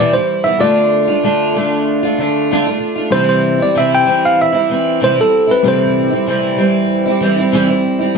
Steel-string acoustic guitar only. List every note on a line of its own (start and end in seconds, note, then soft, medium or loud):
0.00 0.13 E2 medium
0.00 0.14 B2 medium
0.00 0.14 E3 medium
0.00 0.14 G3 medium
0.00 0.14 B3 medium
0.00 0.11 E4 medium
0.13 0.46 E3 soft
0.13 0.45 G3 soft
0.13 0.43 E4 medium
0.44 0.59 E3 soft
0.44 0.60 G3 soft
0.44 0.61 B3 medium
0.44 0.60 E4 medium
0.60 1.07 D3 medium
0.60 1.08 A3 medium
0.60 1.08 D4 medium
0.60 1.06 F4 medium
1.07 1.23 A3 soft
1.07 1.23 D4 soft
1.07 1.23 F4 soft
1.23 1.53 D3 medium
1.23 1.55 A3 medium
1.23 1.56 D4 medium
1.23 1.56 F4 medium
1.54 2.02 D3 medium
1.54 2.03 A3 medium
1.54 2.03 D4 medium
1.54 2.02 F4 medium
2.03 2.18 A3 medium
2.03 2.19 D4 medium
2.03 2.18 F4 medium
2.18 2.50 D3 medium
2.18 2.50 A3 medium
2.18 2.51 D4 medium
2.18 2.51 F4 medium
2.51 2.66 D3 medium
2.51 2.66 A3 medium
2.51 2.67 D4 medium
2.51 2.65 F4 medium
2.66 2.98 A3 soft
2.66 2.97 D4 soft
2.66 2.94 F4 medium
2.96 3.12 D4 soft
2.96 3.12 F4 medium
3.00 3.12 A3 soft
3.11 3.59 C3 medium
3.11 3.59 E3 medium
3.11 3.60 G3 medium
3.11 3.59 C4 medium
3.11 3.57 E4 medium
3.58 3.75 G3 soft
3.58 3.76 C4 soft
3.58 3.75 E4 medium
3.75 4.07 C3 medium
3.75 4.04 E3 medium
3.75 4.05 G3 medium
3.75 4.07 C4 medium
3.75 4.07 E4 medium
4.05 4.53 E3 medium
4.05 4.54 G3 medium
4.05 4.53 C4 medium
4.05 4.51 E4 medium
4.52 4.69 G3 soft
4.52 4.70 C4 soft
4.52 4.69 E4 medium
4.69 5.00 E3 medium
4.69 5.01 G3 medium
4.69 5.01 C4 medium
4.69 5.02 E4 medium
5.01 5.17 C3 medium
5.01 5.17 E3 medium
5.01 5.17 G3 medium
5.01 5.17 C4 medium
5.01 5.14 E4 medium
5.16 5.50 G3 soft
5.16 5.48 C4 medium
5.16 5.46 E4 medium
5.47 5.64 G3 soft
5.47 5.64 C4 soft
5.47 5.64 E4 medium
5.63 6.11 C3 medium
5.63 6.12 E3 medium
5.63 6.12 G3 medium
5.63 6.11 C4 medium
5.63 6.09 E4 medium
6.10 6.27 G3 soft
6.10 6.27 C4 soft
6.10 6.27 E4 medium
6.26 6.58 C3 medium
6.26 6.55 E3 medium
6.26 6.57 G3 medium
6.26 6.58 C4 medium
6.26 6.59 E4 medium
6.56 7.05 E3 medium
6.56 7.06 G3 medium
6.56 7.06 C4 medium
6.56 7.04 E4 medium
7.06 7.21 G3 medium
7.06 7.22 C4 medium
7.06 7.22 E4 medium
7.21 7.37 E3 medium
7.21 7.38 G3 medium
7.21 7.37 C4 medium
7.21 7.35 E4 medium
7.36 7.52 G3 soft
7.36 7.53 C4 soft
7.36 7.53 E4 medium
7.52 7.68 C3 medium
7.52 7.69 E3 medium
7.52 7.69 G3 medium
7.52 7.67 C4 medium
7.52 7.65 E4 medium
7.67 8.01 G3 soft
7.67 8.00 C4 medium
7.67 7.98 E4 medium
7.99 8.16 G3 soft
7.99 8.16 C4 soft
7.99 8.15 E4 medium